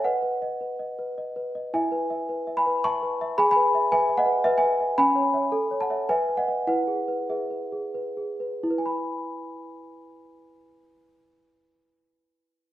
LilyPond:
\new Staff \with { instrumentName = "Celesta" } { \time 3/4 \key e \major \tempo 4 = 106 << { <dis'' fis''>2~ <dis'' fis''>8 r8 | <e'' gis''>4. <gis'' b''>8 <a'' cis'''>4 | <gis'' b''>16 <gis'' b''>8. <e'' gis''>8 <dis'' fis''>8 <b' e''>16 <e'' gis''>8. | <gis'' b''>4. <fis'' a''>8 <e'' gis''>8 <dis'' fis''>8 |
<b' fis''>4 <b' e''>4 r4 | <e' b' gis'' b''>2.~ | <e' b' gis'' b''>2. | } \\ { \tuplet 3/2 { b'8 b'8 dis''8 b'8 dis''8 b'8 dis''8 b'8 dis''8 } | \tuplet 3/2 { e'8 b'8 e''8 b'8 e''8 b'8 e''8 b'8 e''8 } | \tuplet 3/2 { gis'8 b'8 e''8 b'8 e''8 b'8~ b'8 b'8 e''8 } | \tuplet 3/2 { cis'8 cis''8 <cis'' e''>8 a'8 cis''8 <cis'' e''>8 b'8 b'8 <b' dis''>8 } |
\tuplet 3/2 { e'8 gis'8 b'8 gis'8 b'8 gis'8 b'8 gis'8 b'8 } | r2. | r2. | } >> }